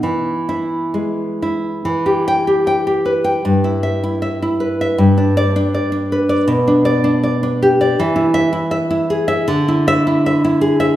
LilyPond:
\new Staff \with { instrumentName = "Nylon-string guitar" } { \time 2/4 \key e \major \tempo 4 = 78 << { r8 e'4 r8 | \key e \minor r8 g''8 r4 | r8 e''8 r4 | r8 d''8 r4 |
r8 d''8 r4 | \key e \major r8 e''8 r4 | r8 e''8 r4 | } \\ { e4 gis8 e'8 | e16 g'8 g'16 g''16 g'16 b'16 g''16 | g,16 e'8 e'16 e''16 e'16 b'16 e''16 | g,16 d'8 d'16 d''16 d'16 b'16 d''16 |
b,16 d'8 d'16 d''16 d'16 g'16 d''16 | e16 e'8 e'16 e''16 e'16 gis'16 e''16 | d16 e'8 e'16 e''16 e'16 gis'16 e''16 | } >> }